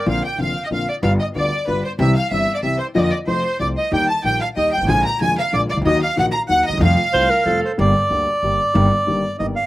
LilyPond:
<<
  \new Staff \with { instrumentName = "Bandoneon" } { \time 3/4 \key bes \major \tempo 4 = 187 f''8 g''8 f''8. ees''16 f''8 d''8 | f''8 ees''8 d''4 b'8 c''8 | e''8 f''8 e''8. d''16 e''8 c''8 | ees''32 d''32 ees''16 d''8 c''4 d''8 ees''8 |
g''8 a''8 g''8 f''8 ees''8 g''8 | aes''8 bes''8 aes''8 f''8 d''8 d''8 | ees''8 f''8 ges''8 bes''8 ges''8 ees''8 | f''2~ f''8 c''8 |
\key g \minor d''2.~ | d''2 ees''8 f''8 | }
  \new Staff \with { instrumentName = "Violin section" } { \time 3/4 \key bes \major f''8 g''8 f''8. ees''16 f''8 d''8 | f''8 ees''8 d''4 b'8 c''8 | e''8 f''8 e''8. d''16 e''8 c''8 | ees''32 d''32 ees''16 d''8 c''4 d''8 ees''8 |
g''8 a''8 g''8 f''8 ees''8 g''8 | aes''8 bes''8 aes''8 f''8 d''8 d''8 | ees''8 f''8 ges''8 bes''8 ges''8 ees''8 | f''2~ f''8 r8 |
\key g \minor r2. | r2. | }
  \new Staff \with { instrumentName = "Clarinet" } { \time 3/4 \key bes \major r2. | r2. | r2. | r2. |
r2. | r2. | r2. | r4 c''8 bes'8 a'4 |
\key g \minor r2. | r2. | }
  \new Staff \with { instrumentName = "Grand piano" } { \clef bass \time 3/4 \key bes \major <bes,, bes, d bes c' f'>8 r8 <f,, f, d bes c' f'>8 r8 <bes,, bes, d bes c' f'>8 r8 | <g,, g, d g b f'>8 r8 <d, d g b f'>8 r8 <g,, g, d g b f'>8 r8 | <c, c e g c' g'>8 r8 <g,, g, e g c' g'>8 r8 <c, c e g c' g'>8 r8 | <f, d f bes f'>8 r8 <f, c f a f'>8 r8 <c, c f a f'>8 r8 |
<ees, ees g bes g'>8 r8 <bes,, bes, ees g bes g'>8 r8 <ees, ees g bes g'>8 r32 g,,32 aes,,32 a,,32 | <bes,, bes, d aes bes f'>8 r8 <f,, f, d aes bes f'>8 r8 <bes,, bes, d aes bes f'>8 r32 c,32 des,32 d,32 | <ees, ees ges bes ges'>8 r8 <bes,, bes, ees ges bes ges'>8 r8 <ees, ees ges bes ges'>8 r32 d,32 ees,32 e,32 | <f, c f g a f'>8 r8 <c, c g a f'>8 r8 <f, c f g a f'>8 r8 |
\key g \minor <g,, g, d g bes g'>8 r8 <d, d g bes g'>8 r8 <g,, g, d g bes g'>8 r8 | <g,, g, ees g bes g'>8 r8 <g,, g, ees g bes g'>8 r8 <g,, g, ees g bes g'>8 r8 | }
  \new Staff \with { instrumentName = "Upright bass" } { \clef bass \time 3/4 \key bes \major bes,,16. r8 r32 f,,16. r8 r32 bes,,16. r8 r32 | g,,16. r8 r32 d,16. r8 r32 g,,16. r8 r32 | c,16. r8 r32 g,,16. r8 r32 c,16. r8 r32 | f,16. r8 r32 f,16. r8 r32 c,16. r8 r32 |
ees,16. r8 r32 bes,,16. r8 r32 ees,16. r16 g,,32 aes,,32 a,,32 | bes,,16. r8 r32 f,,16. r8 r32 bes,,16. r16 c,32 des,32 d,32 | ees,16. r8 r32 bes,,16. r8 r32 ees,16. r16 d,32 ees,32 e,32 | f,16. r8 r32 c,16. r8 r32 f,16. r8 r32 |
\key g \minor g,,16. r8 r32 d,16. r8 r32 g,,16. r8 r32 | g,,16. r8 r32 g,,16. r8 r32 g,,16. r8 r32 | }
>>